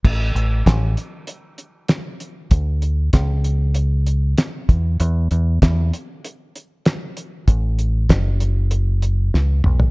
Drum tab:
CC |x---------------|----------------|----------------|----------------|
HH |--x-x-x-x-x-x-x-|x-x-x-x-x-x-x-x-|x-x-x-x-x-x-x-x-|x-x-x-x-x-x-----|
SD |----o-------o---|----o-------o---|----o-------o---|----o-------o---|
T2 |----------------|----------------|----------------|--------------o-|
FT |----------------|----------------|----------------|---------------o|
BD |o---o-----------|o---o---------o-|----o-----------|o---o-----------|